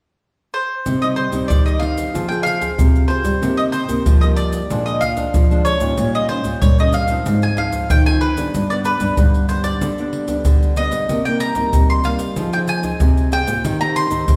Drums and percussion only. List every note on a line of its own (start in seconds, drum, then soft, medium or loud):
0.86 pandeiro medium
0.86 shaker medium
0.86 surdo medium
1.03 pandeiro soft
1.03 shaker soft
1.17 pandeiro medium
1.32 pandeiro medium
1.32 shaker medium
1.32 surdo soft
1.50 pandeiro medium
1.50 shaker medium
1.50 surdo medium
1.67 pandeiro soft
1.67 shaker soft
1.82 pandeiro medium
1.98 pandeiro medium
1.98 shaker medium
1.98 surdo soft
2.15 pandeiro medium
2.15 shaker medium
2.15 surdo medium
2.32 pandeiro soft
2.32 shaker soft
2.46 pandeiro medium
2.46 shaker medium
2.62 pandeiro medium
2.62 shaker medium
2.62 surdo soft
2.79 pandeiro medium
2.79 shaker medium
2.79 surdo medium
2.95 pandeiro soft
2.95 shaker soft
3.10 pandeiro medium
3.25 pandeiro medium
3.25 shaker medium
3.25 surdo soft
3.43 pandeiro medium
3.43 shaker medium
3.43 surdo medium
3.59 pandeiro soft
3.59 shaker soft
3.73 pandeiro medium
3.73 shaker medium
3.89 pandeiro medium
3.89 shaker medium
3.89 surdo soft
4.06 pandeiro medium
4.06 shaker medium
4.06 surdo loud
4.23 pandeiro soft
4.23 shaker soft
4.37 pandeiro medium
4.37 shaker medium
4.53 pandeiro medium
4.53 shaker medium
4.53 surdo soft
4.70 pandeiro medium
4.70 shaker medium
4.70 surdo medium
4.87 pandeiro soft
4.87 shaker soft
5.02 pandeiro medium
5.02 shaker medium
5.02 surdo soft
5.17 pandeiro medium
5.17 shaker medium
5.17 surdo soft
5.34 pandeiro medium
5.34 shaker medium
5.34 surdo medium
5.51 pandeiro soft
5.51 shaker soft
5.66 pandeiro medium
5.66 shaker medium
5.80 pandeiro medium
5.80 shaker medium
5.80 surdo soft
5.98 pandeiro medium
5.98 shaker medium
5.98 surdo medium
6.15 pandeiro soft
6.15 shaker soft
6.29 pandeiro medium
6.44 pandeiro medium
6.44 shaker medium
6.44 surdo soft
6.62 pandeiro medium
6.62 shaker medium
6.62 surdo loud
6.79 pandeiro soft
6.79 shaker soft
6.93 pandeiro medium
6.93 shaker medium
7.08 pandeiro medium
7.08 shaker medium
7.08 surdo soft
7.26 pandeiro medium
7.26 shaker medium
7.26 surdo medium
7.42 pandeiro soft
7.42 shaker soft
7.57 pandeiro medium
7.57 surdo soft
7.72 pandeiro medium
7.72 shaker medium
7.72 surdo soft
7.90 pandeiro medium
7.90 shaker medium
7.90 surdo medium
8.07 pandeiro soft
8.07 shaker soft
8.21 pandeiro medium
8.37 pandeiro medium
8.37 shaker medium
8.37 surdo soft
8.54 pandeiro medium
8.54 shaker medium
8.54 surdo medium
8.71 pandeiro soft
8.71 shaker soft
8.85 pandeiro soft
8.85 shaker medium
9.00 pandeiro medium
9.00 shaker medium
9.00 surdo soft
9.17 pandeiro medium
9.17 shaker medium
9.17 surdo medium
9.34 pandeiro soft
9.34 shaker soft
9.49 pandeiro soft
9.49 shaker medium
9.64 pandeiro medium
9.64 shaker medium
9.64 surdo soft
9.81 pandeiro medium
9.81 shaker medium
9.81 surdo medium
9.98 pandeiro soft
9.98 shaker soft
10.13 pandeiro soft
10.28 pandeiro medium
10.28 shaker medium
10.28 surdo soft
10.45 pandeiro medium
10.45 shaker medium
10.45 surdo medium
10.63 pandeiro soft
10.63 shaker soft
10.76 pandeiro medium
10.76 shaker medium
10.92 pandeiro medium
10.92 shaker medium
10.92 surdo soft
11.09 pandeiro medium
11.09 shaker medium
11.09 surdo medium
11.26 pandeiro soft
11.26 shaker soft
11.40 pandeiro soft
11.40 shaker medium
11.55 pandeiro medium
11.55 shaker medium
11.55 surdo soft
11.73 pandeiro medium
11.73 shaker medium
11.73 surdo medium
11.90 pandeiro soft
11.90 shaker soft
12.04 pandeiro soft
12.04 shaker medium
12.19 pandeiro medium
12.19 shaker medium
12.19 surdo soft
12.36 pandeiro medium
12.36 shaker medium
12.36 surdo medium
12.53 pandeiro soft
12.53 shaker soft
12.68 pandeiro medium
12.68 shaker medium
12.83 pandeiro medium
12.83 shaker medium
12.83 surdo soft
13.00 pandeiro medium
13.00 shaker medium
13.00 surdo medium
13.17 pandeiro soft
13.17 shaker soft
13.32 pandeiro medium
13.32 shaker medium
13.47 pandeiro medium
13.47 shaker medium
13.47 surdo soft
13.65 pandeiro medium
13.65 shaker medium
13.65 surdo medium
13.81 pandeiro soft
13.81 shaker soft
13.96 pandeiro medium
13.96 shaker medium
14.11 pandeiro medium
14.11 shaker medium
14.11 surdo soft
14.28 pandeiro medium
14.28 shaker medium
14.28 surdo medium